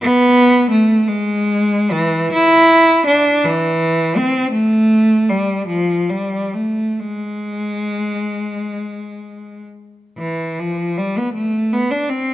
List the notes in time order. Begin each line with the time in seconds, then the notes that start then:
0.01 B3
0.71 A3
1.08 G#3
1.91 E3
2.32 E4
3.06 D4
3.45 E3
4.17 C4
4.52 A3
5.29 G3
5.67 F3
6.09 G3
6.54 A3
6.99 G#3
10.18 E3
10.59 F3
10.97 G3
11.18 B3
11.34 A3
11.73 B3
11.91 D4
12.09 C4